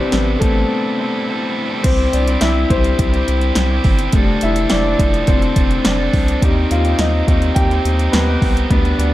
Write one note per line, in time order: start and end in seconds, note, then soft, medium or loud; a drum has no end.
0.00 1.86 C3 soft
0.00 1.86 G3 soft
0.00 0.40 G3 medium
0.00 0.13 B3 medium
0.00 1.86 C4 medium
0.00 0.42 C4 medium
0.00 1.87 D4 medium
0.00 0.42 E4 medium
0.00 1.86 E4 medium
0.00 0.41 A4 medium
0.00 0.11 B4 medium
0.00 1.83 C5 medium
0.00 1.86 D5 medium
0.00 1.86 E5 medium
0.11 0.36 A1 loud
0.11 0.19 B3 medium
0.11 0.17 B4 medium
0.11 snare medium
0.11 closed hi-hat medium
0.40 0.65 A1 loud
0.40 0.98 G3 medium
0.40 1.24 A3 medium
0.40 0.99 C4 medium
0.40 1.22 A4 medium
0.40 kick medium
0.40 closed hi-hat medium
0.44 1.00 E4 medium
0.44 1.00 A4 medium
0.99 1.26 G3 medium
0.99 1.27 C4 medium
0.99 1.28 E4 medium
0.99 1.29 A4 medium
1.27 1.70 G3 medium
1.27 1.71 C4 medium
1.27 1.70 E4 medium
1.27 1.68 A4 medium
1.70 1.84 G3 medium
1.70 1.85 C4 soft
1.70 1.85 E4 medium
1.70 1.84 A4 medium
1.83 2.08 C2 loud
1.83 2.27 C3 medium
1.83 2.28 G3 medium
1.83 2.12 C4 medium
1.83 2.28 C4 medium
1.83 2.27 E4 loud
1.83 2.25 G4 medium
1.83 2.13 C5 medium
1.83 kick loud
1.83 closed hi-hat medium
1.83 crash medium
2.12 2.37 C2 medium
2.12 2.41 D4 medium
2.12 2.42 D5 medium
2.12 closed hi-hat medium
2.27 2.70 C4 soft
2.27 2.71 E4 medium
2.27 2.70 G4 medium
2.27 closed hi-hat medium
2.41 2.65 C2 loud
2.41 2.69 E4 medium
2.41 2.71 E5 medium
2.41 snare medium
2.41 closed hi-hat medium
2.70 2.94 C2 loud
2.70 3.13 C3 medium
2.70 3.13 G3 medium
2.70 3.09 G3 soft
2.70 3.13 C4 medium
2.70 3.82 C4 medium
2.70 3.13 E4 medium
2.70 3.10 E4 medium
2.70 3.11 G4 medium
2.70 3.81 C5 loud
2.70 kick medium
2.70 closed hi-hat medium
2.84 closed hi-hat soft
2.99 3.22 C2 loud
2.99 kick medium
2.99 closed hi-hat medium
3.12 3.73 C4 soft
3.12 3.71 E4 medium
3.12 3.69 G4 medium
3.12 closed hi-hat soft
3.28 3.51 C2 loud
3.28 closed hi-hat medium
3.41 closed hi-hat soft
3.55 3.80 C2 medium
3.55 snare loud
3.55 closed hi-hat medium
3.70 4.13 C4 medium
3.70 4.14 E4 medium
3.70 4.13 G4 medium
3.84 4.08 G1 medium
3.84 kick medium
3.84 open hi-hat medium
3.99 closed hi-hat soft
4.12 4.37 F1 loud
4.12 4.56 F3 medium
4.12 4.51 G3 medium
4.12 4.52 A3 soft
4.12 4.57 C4 medium
4.12 4.52 D4 medium
4.12 4.57 D4 medium
4.12 4.55 A4 medium
4.12 kick loud
4.12 closed hi-hat medium
4.41 4.66 F1 loud
4.41 4.70 E4 medium
4.41 4.72 E5 medium
4.41 closed hi-hat medium
4.56 4.99 C4 soft
4.56 4.99 D4 medium
4.56 4.99 A4 medium
4.56 closed hi-hat medium
4.70 4.95 F1 medium
4.70 5.25 D4 medium
4.70 5.30 D5 medium
4.70 snare medium
4.70 closed hi-hat medium
4.99 5.23 F1 loud
4.99 5.42 F3 medium
4.99 5.42 C4 medium
4.99 5.42 D4 medium
4.99 5.40 A4 medium
4.99 kick medium
4.99 closed hi-hat medium
5.14 closed hi-hat soft
5.27 5.51 F1 loud
5.27 5.82 C4 medium
5.27 5.87 C5 medium
5.27 kick medium
5.27 closed hi-hat medium
5.41 6.02 C4 soft
5.41 5.99 D4 soft
5.41 5.98 A4 medium
5.41 closed hi-hat soft
5.56 5.80 F1 loud
5.56 kick medium
5.56 closed hi-hat medium
5.71 closed hi-hat soft
5.84 6.09 F1 medium
5.84 6.26 D4 medium
5.84 6.24 D5 medium
5.84 snare loud
5.84 closed hi-hat medium
5.99 6.42 C4 soft
5.99 6.43 D4 medium
5.99 6.42 A4 medium
6.13 6.37 C2 medium
6.13 kick medium
6.13 open hi-hat medium
6.28 closed hi-hat soft
6.42 6.66 D#2 loud
6.42 6.85 D#3 medium
6.42 6.85 G3 medium
6.42 6.80 G3 medium
6.42 6.85 C4 medium
6.42 6.81 C4 soft
6.42 6.85 D#4 medium
6.42 6.81 D#4 medium
6.42 6.83 G4 medium
6.42 kick loud
6.42 closed hi-hat medium
6.71 6.94 D#2 loud
6.71 6.98 F4 medium
6.71 7.00 F5 medium
6.71 closed hi-hat medium
6.84 7.27 C4 medium
6.84 7.27 D#4 medium
6.84 7.27 G4 medium
6.84 closed hi-hat medium
6.99 7.22 D#2 loud
6.99 7.26 D#4 medium
6.99 7.58 D#5 medium
6.99 snare loud
6.99 closed hi-hat medium
7.26 7.51 D#2 medium
7.26 7.70 D#3 medium
7.26 7.53 G3 soft
7.26 7.70 G3 medium
7.26 7.53 C4 soft
7.26 7.71 C4 medium
7.26 7.53 D#4 medium
7.26 7.70 D#4 medium
7.26 7.68 G4 medium
7.26 kick medium
7.26 closed hi-hat medium
7.42 closed hi-hat soft
7.55 7.80 D#2 medium
7.55 8.10 G4 medium
7.55 8.14 G5 medium
7.55 kick medium
7.55 closed hi-hat medium
7.70 8.29 C4 soft
7.70 8.27 D#4 medium
7.70 8.26 G4 medium
7.70 closed hi-hat soft
7.85 8.08 D#2 loud
7.85 closed hi-hat medium
7.99 closed hi-hat soft
8.11 8.37 D#2 medium
8.11 8.53 B3 medium
8.11 8.52 B4 medium
8.11 snare loud
8.11 closed hi-hat medium
8.26 8.71 C4 medium
8.26 8.71 D#4 medium
8.26 8.70 G4 medium
8.42 8.65 C2 medium
8.42 kick medium
8.42 open hi-hat medium
8.57 closed hi-hat soft
8.70 8.94 D2 medium
8.70 9.13 D3 medium
8.70 9.14 G3 medium
8.70 9.13 G3 medium
8.70 9.14 B3 medium
8.70 8.98 B3 medium
8.70 9.13 D4 medium
8.70 8.99 D4 medium
8.70 9.11 G4 medium
8.70 9.00 B4 medium
8.70 kick loud
8.70 closed hi-hat medium
8.85 closed hi-hat soft
8.98 9.14 D2 loud
8.98 9.14 D4 medium
8.98 9.14 D5 medium
8.98 closed hi-hat medium